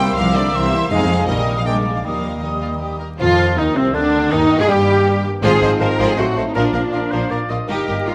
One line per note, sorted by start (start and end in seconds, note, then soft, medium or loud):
0.00 0.13 C2 loud
0.00 0.93 C3 medium
0.00 0.17 G3 loud
0.00 0.18 G3 medium
0.00 0.93 G3 medium
0.00 0.18 A#3 medium
0.00 0.87 A#3 medium
0.00 0.93 A#3 medium
0.00 0.81 C4 medium
0.00 0.17 E4 medium
0.00 0.17 A#4 medium
0.00 0.17 C5 medium
0.00 0.91 E5 medium
0.00 0.17 G5 loud
0.00 0.45 A#5 medium
0.00 0.17 C6 loud
0.08 0.71 E4 medium
0.17 0.50 C2 loud
0.17 0.36 E3 medium
0.17 0.36 F3 loud
0.17 0.36 C4 medium
0.17 0.36 G4 medium
0.17 0.36 A#4 loud
0.17 0.93 A#4 medium
0.17 0.35 F5 loud
0.17 0.54 D6 loud
0.27 0.63 C5 medium
0.35 0.54 D3 loud
0.35 0.54 G3 medium
0.35 0.54 A#3 medium
0.35 0.54 E4 medium
0.35 0.54 C5 medium
0.35 0.55 D5 loud
0.35 0.54 E5 medium
0.46 0.93 A#5 medium
0.53 0.87 C2 loud
0.53 0.71 E3 medium
0.53 0.91 E3 loud
0.53 0.71 C4 medium
0.53 0.72 G4 medium
0.53 0.72 A#4 medium
0.53 0.91 E5 loud
0.53 0.93 E5 medium
0.53 0.91 C6 loud
0.64 1.30 C5 medium
0.72 0.91 G3 medium
0.72 0.91 A#3 medium
0.72 0.93 E4 medium
0.72 0.92 E4 medium
0.72 0.92 C5 medium
0.82 1.09 C4 medium
0.90 1.30 F2 loud
0.90 1.26 F2 loud
0.90 1.04 C3 medium
0.90 1.28 F3 loud
0.90 1.04 G#3 loud
0.90 1.26 G#3 medium
0.90 1.05 G#3 medium
0.90 1.26 C4 loud
0.90 1.04 D#4 loud
0.90 1.26 D#4 loud
0.90 1.26 G#4 loud
0.90 1.26 D#5 medium
0.90 1.28 F5 loud
0.90 1.28 G#5 loud
1.01 1.30 C3 medium
1.10 1.30 C4 medium
1.19 1.55 D#4 medium
1.27 2.03 A#1 loud
1.27 1.41 A#2 medium
1.27 1.64 A#2 medium
1.27 1.56 D#3 loud
1.27 1.41 G3 medium
1.27 1.65 G3 medium
1.27 1.66 G3 medium
1.27 1.40 A#3 medium
1.27 1.65 A#3 medium
1.27 1.41 D#4 medium
1.27 1.66 D#4 medium
1.27 1.65 A#4 medium
1.27 1.56 D#5 loud
1.27 1.68 D#5 medium
1.27 1.65 D#6 medium
1.39 1.68 G3 medium
1.47 1.84 A#3 medium
1.57 1.60 F3 medium
1.57 1.68 D#4 medium
1.57 1.66 F5 loud
1.65 2.06 A#2 medium
1.65 1.79 A#2 medium
1.65 1.94 G3 medium
1.65 2.05 G#3 medium
1.65 1.79 G#3 medium
1.65 2.03 G#3 medium
1.65 1.78 A#3 medium
1.65 2.02 A#3 medium
1.65 1.78 D4 medium
1.65 2.04 D4 medium
1.65 2.02 A#4 medium
1.65 2.06 D5 medium
1.65 1.74 G5 loud
1.65 2.03 D6 medium
1.75 2.06 F3 medium
1.85 2.13 A#3 medium
1.94 2.03 F3 medium
1.94 2.05 D4 soft
1.94 2.02 F5 medium
2.03 3.01 D#2 medium
2.03 2.17 A#2 medium
2.03 3.18 D#3 medium
2.03 2.42 F3 medium
2.03 2.41 G3 medium
2.03 2.17 G3 medium
2.03 2.42 G3 medium
2.03 2.41 A#3 medium
2.03 2.18 A#3 medium
2.03 2.42 D#4 medium
2.03 2.18 D#4 medium
2.03 2.42 A#4 medium
2.03 2.43 D#5 medium
2.03 2.42 F5 medium
2.03 2.99 D#6 medium
2.14 4.49 A#3 soft
2.23 3.09 D#4 soft
2.33 3.00 G4 soft
2.42 3.00 D#3 medium
2.42 2.99 G3 medium
2.42 3.00 G3 medium
2.42 2.99 A#3 medium
2.42 2.50 D#4 medium
2.42 3.56 A#4 medium
2.42 3.01 D#5 medium
2.53 2.90 D#5 medium
2.61 2.69 F4 medium
2.61 2.80 G5 soft
2.72 5.45 A#5 medium
2.80 3.00 G4 medium
2.80 3.75 G5 medium
2.92 3.93 D#5 medium
2.99 4.68 G4 soft
2.99 3.07 A#4 medium
3.10 3.38 D#4 soft
3.19 3.55 F2 loud
3.19 4.33 D#3 medium
3.19 3.55 F3 loud
3.19 3.56 F3 loud
3.19 3.55 F4 loud
3.19 3.60 F4 loud
3.19 3.55 F4 loud
3.39 6.35 D#4 medium
3.57 3.76 D#2 loud
3.57 3.74 D#3 medium
3.57 3.77 D#3 medium
3.57 3.76 D#4 medium
3.57 3.78 D#4 loud
3.57 3.77 D#4 medium
3.57 4.12 A#4 medium
3.75 3.95 C2 medium
3.75 3.93 C3 loud
3.75 3.95 C3 medium
3.75 3.95 C3 loud
3.75 3.95 C4 loud
3.75 3.95 C4 medium
3.75 3.96 C4 loud
3.75 3.95 C4 medium
3.75 3.84 C4 loud
3.75 5.44 G5 medium
3.94 4.32 D2 loud
3.94 4.31 D3 loud
3.94 4.31 D4 loud
3.94 4.32 D4 loud
3.94 4.31 D4 loud
3.94 4.32 D4 loud
3.94 4.86 D#5 medium
4.13 5.04 A#4 medium
4.31 4.40 D#2 loud
4.31 5.44 G2 loud
4.31 4.59 D#3 loud
4.31 4.45 D#3 loud
4.31 4.60 D#3 loud
4.31 4.59 D#4 loud
4.31 4.60 D#4 loud
4.31 4.39 D#4 loud
4.31 4.60 D#4 loud
4.50 5.44 A#3 medium
4.59 4.63 G#2 loud
4.59 4.69 G#3 loud
4.59 4.70 G#3 loud
4.59 4.69 G#3 loud
4.59 4.69 G#4 loud
4.59 4.64 G#4 loud
4.59 4.69 G#4 loud
4.59 4.70 G#4 loud
4.59 4.65 G#4 loud
4.67 5.23 G2 loud
4.67 5.22 G3 loud
4.67 5.24 G3 loud
4.67 5.24 G4 loud
4.67 5.23 G4 medium
4.67 5.24 G4 loud
4.67 5.25 G4 loud
4.67 5.24 G4 loud
4.71 5.24 G4 loud
4.87 5.98 D#5 medium
5.06 5.44 A#4 medium
5.24 5.45 G4 loud
5.41 5.51 G#1 loud
5.41 6.19 G#2 loud
5.41 6.14 G#2 loud
5.41 5.60 F3 loud
5.41 6.13 F3 medium
5.41 5.51 F3 loud
5.41 6.12 C4 loud
5.41 6.13 D#4 loud
5.41 5.61 F4 loud
5.41 5.60 G#4 loud
5.41 5.78 G#4 loud
5.41 5.52 C5 loud
5.41 5.49 D#5 loud
5.61 5.69 G#1 medium
5.61 5.69 F3 medium
5.61 5.70 F3 medium
5.61 6.57 C4 medium
5.61 5.70 C5 loud
5.61 5.69 C5 loud
5.61 5.67 D#5 medium
5.61 5.69 D#5 medium
5.80 5.88 G#1 medium
5.80 5.87 F3 medium
5.80 5.89 F3 loud
5.80 6.19 F4 medium
5.80 5.88 G#4 medium
5.80 6.08 A#4 loud
5.80 5.88 C5 medium
5.80 5.86 D#5 medium
5.98 6.06 G#1 loud
5.98 6.15 F3 loud
5.98 6.08 F3 medium
5.98 6.17 F4 loud
5.98 6.16 G#4 loud
5.98 6.07 C5 medium
5.98 6.05 D#5 medium
5.98 6.57 D#5 medium
6.09 6.18 G#4 loud
6.17 6.25 A1 medium
6.17 6.55 A2 loud
6.17 6.57 A2 loud
6.17 6.25 F#3 medium
6.17 6.55 A3 medium
6.17 6.27 A3 medium
6.17 6.54 C4 medium
6.17 6.54 D#4 medium
6.17 6.46 F#4 loud
6.17 6.26 C5 medium
6.17 6.23 D#5 medium
6.17 6.25 D#5 medium
6.36 6.44 A1 medium
6.36 6.44 F#3 medium
6.36 6.45 A3 medium
6.36 6.57 D#4 medium
6.36 6.44 A4 medium
6.36 6.44 C5 medium
6.36 6.42 D#5 medium
6.47 6.56 D#4 loud
6.54 6.63 A#1 loud
6.54 7.70 A#2 medium
6.54 7.50 A#2 medium
6.54 6.73 F3 loud
6.54 7.49 F3 medium
6.54 7.50 A#3 medium
6.54 6.64 A#3 medium
6.54 7.30 D4 loud
6.54 6.73 D4 loud
6.54 7.49 F4 medium
6.54 6.73 A#4 loud
6.54 6.64 A#4 medium
6.54 6.61 F5 medium
6.73 6.82 A#1 medium
6.73 6.82 F3 medium
6.73 7.87 A#3 medium
6.73 6.83 A#3 medium
6.73 6.81 A#4 medium
6.73 6.82 A#4 medium
6.73 6.80 F5 medium
6.73 6.82 F5 medium
6.92 7.01 A#1 medium
6.92 7.01 F3 medium
6.92 7.01 A#3 medium
6.92 7.01 F4 medium
6.92 7.29 A#4 medium
6.92 7.13 A#4 medium
6.92 7.01 D5 medium
6.92 6.99 F5 medium
7.11 7.20 A#1 medium
7.11 7.30 F3 loud
7.11 7.20 A#3 medium
7.11 7.30 D4 medium
7.11 7.29 A#4 medium
7.11 7.32 C5 medium
7.11 7.70 F5 medium
7.11 7.18 F5 medium
7.30 7.39 A#1 medium
7.30 7.38 F3 medium
7.30 7.39 A#3 medium
7.30 8.05 A#4 medium
7.30 7.39 A#4 medium
7.30 7.51 D5 loud
7.30 7.38 F5 medium
7.30 7.37 F5 medium
7.49 7.58 A#1 medium
7.49 7.57 F3 medium
7.49 7.58 A#3 medium
7.49 7.70 F4 medium
7.49 7.57 F4 medium
7.49 7.58 D5 medium
7.49 7.68 D#5 medium
7.49 7.55 F5 medium
7.67 7.77 G1 loud
7.67 8.15 G2 medium
7.67 8.15 A#2 medium
7.67 8.15 G3 medium
7.67 7.86 G3 medium
7.67 8.15 A#3 medium
7.67 7.86 D#4 loud
7.67 8.15 D#4 medium
7.67 7.86 G4 medium
7.67 8.04 G4 loud
7.67 8.15 A#4 medium
7.67 8.15 D#5 medium
7.87 7.96 G1 medium
7.87 7.95 G3 medium
7.87 8.15 A#3 medium
7.87 7.96 A#4 medium
7.87 7.95 D#5 medium
8.06 8.15 G1 medium
8.06 8.14 G3 medium
8.06 8.15 F4 loud
8.06 8.14 G4 medium
8.06 8.15 A#4 medium
8.06 8.14 A#4 medium